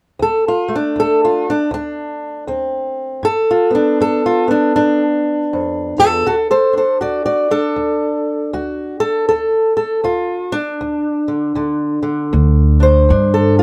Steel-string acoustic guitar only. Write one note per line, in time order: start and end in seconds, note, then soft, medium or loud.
0.19 0.91 D2 medium
0.19 0.48 A4 medium
0.48 0.73 F4 medium
0.68 3.21 A3 soft
0.75 1.49 D4 medium
0.96 1.67 D2 medium
0.96 1.24 A4 medium
1.25 1.49 F4 medium
1.50 1.73 D4 medium
1.71 2.42 D2 medium
1.71 2.48 D4 medium
2.47 3.18 D2 medium
2.47 3.21 C4 soft
3.23 3.94 G2 medium
3.23 4.00 A4 medium
3.51 3.74 F4 medium
3.71 4.47 B3 soft
3.75 4.25 D4 medium
4.00 4.70 G2 medium
4.00 5.02 A4 medium
4.26 4.50 F4 medium
4.48 6.24 B3 soft
4.48 4.75 D4 medium
4.76 5.46 G2 medium
4.76 6.00 D4 medium
5.53 5.98 F2 medium
5.98 6.27 E2 medium
5.98 6.26 F4 medium
5.98 6.26 A4 medium
6.26 6.97 D2 medium
6.26 6.34 F#4 medium
6.26 6.50 A4 medium
6.51 6.76 A4 medium
6.51 6.76 C5 medium
6.73 7.50 D4 soft
6.77 7.00 A4 medium
6.77 7.02 C5 medium
7.01 7.72 D2 medium
7.01 7.24 F#4 medium
7.01 7.24 D5 medium
7.26 7.51 F#4 medium
7.26 8.28 D5 medium
7.51 10.52 D4 soft
7.51 8.53 A4 medium
7.76 8.47 D2 medium
8.53 9.24 D2 medium
8.53 9.00 F#4 soft
9.00 9.27 A4 medium
9.29 10.00 D2 medium
9.29 9.76 A4 medium
9.77 10.04 A4 medium
10.04 10.75 D2 medium
10.04 10.52 F4 medium
10.52 12.33 D4 medium
10.81 11.51 D2 medium
11.28 11.55 D3 soft
11.55 12.26 D2 medium
11.55 12.01 D3 soft
12.03 13.63 D3 soft
12.33 13.03 D2 medium
12.80 13.10 D4 soft
12.80 13.63 C5 medium
13.09 13.63 D2 medium
13.09 13.63 D4 soft
13.34 13.58 A4 medium
13.59 13.63 F4 medium